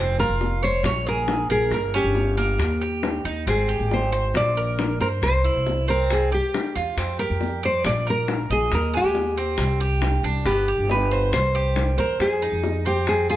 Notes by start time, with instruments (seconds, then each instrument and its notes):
Already playing: upright bass F1, cuban tres C4
0.19 cuban tres F4, nylon-string guitar A#4, maracas
0.29 upright bass F1
0.41 high bongo, maracas
0.63 nylon-string guitar C5, cuban tres C#5, maracas
0.83 upright bass A#1, nylon-string guitar C#5, high bongo, maracas
1.06 cuban tres G#4, nylon-string guitar A#4, maracas
1.28 high bongo, low bongo, maracas
1.49 upright bass A#1, nylon-string guitar G#4, cuban tres A#4, maracas
1.71 upright bass G1, nylon-string guitar A#4, high bongo, maracas
1.94 cuban tres C#4, nylon-string guitar G4, maracas
2.04 upright bass G1
2.15 high bongo, maracas
2.37 cuban tres A#3, high bongo, maracas
2.58 upright bass D#2, high bongo, maracas
2.81 cuban tres G4, high bongo, maracas
3.03 high bongo, low bongo, maracas
3.25 upright bass D#2, cuban tres D#4, high bongo, maracas
3.47 upright bass G#1, cuban tres C4, nylon-string guitar G#4, high bongo, maracas
3.69 cuban tres G4, maracas
3.79 upright bass G#1
3.91 nylon-string guitar C5, high bongo, maracas
4.12 cuban tres C5, maracas
4.34 upright bass A#1, nylon-string guitar D5, high bongo, maracas
4.57 cuban tres A#4, maracas
4.79 high bongo, low bongo, maracas
5.00 upright bass G2, nylon-string guitar A#4, cuban tres C5, maracas
5.22 upright bass C2, nylon-string guitar C5, high bongo, maracas
5.44 cuban tres E4, maracas
5.54 upright bass C2
5.66 high bongo, maracas
5.88 cuban tres C4, nylon-string guitar A#4, high bongo, maracas
6.10 nylon-string guitar G#4, high bongo, maracas
6.32 cuban tres G4, nylon-string guitar G4, high bongo, maracas
6.54 high bongo, low bongo, maracas
6.75 upright bass E2, cuban tres F4, high bongo, maracas
6.97 upright bass F2, cuban tres C4, high bongo, maracas
7.19 cuban tres G4, nylon-string guitar A#4, maracas
7.30 upright bass F2
7.41 high bongo, maracas
7.63 nylon-string guitar C5, cuban tres D5, maracas
7.84 upright bass A#1, nylon-string guitar D5, high bongo, maracas
8.07 cuban tres A#4, nylon-string guitar A#4, maracas
8.28 high bongo, low bongo, maracas
8.50 upright bass A#1, nylon-string guitar G#4, cuban tres D#5, maracas
8.71 upright bass D#2, nylon-string guitar A#4, high bongo, maracas
8.94 cuban tres G#3, nylon-string guitar G4, maracas
9.04 upright bass D#2
9.15 high bongo, maracas
9.36 cuban tres C4, high bongo, maracas
9.58 upright bass C2, high bongo, maracas
9.80 cuban tres G4, high bongo, maracas
10.02 high bongo, low bongo, maracas
10.23 upright bass C2, cuban tres D4, high bongo, maracas
10.45 upright bass G1, cuban tres B3, nylon-string guitar G4, high bongo, maracas
10.68 cuban tres G4, maracas
10.78 upright bass G1
10.89 nylon-string guitar B4, high bongo, maracas
11.11 cuban tres C5, maracas
11.32 upright bass C2, nylon-string guitar C5, high bongo, maracas
11.55 cuban tres G4, maracas
11.76 high bongo, low bongo, maracas
11.98 upright bass E2, nylon-string guitar A#4, cuban tres C5, maracas
12.19 upright bass F2, nylon-string guitar G#4, high bongo, maracas
12.42 cuban tres D#4, maracas
12.52 upright bass F2
12.64 high bongo, maracas
12.85 cuban tres C4, nylon-string guitar G4, high bongo, maracas
13.07 nylon-string guitar G#4, high bongo, maracas
13.29 cuban tres F4, nylon-string guitar G#4, high bongo, maracas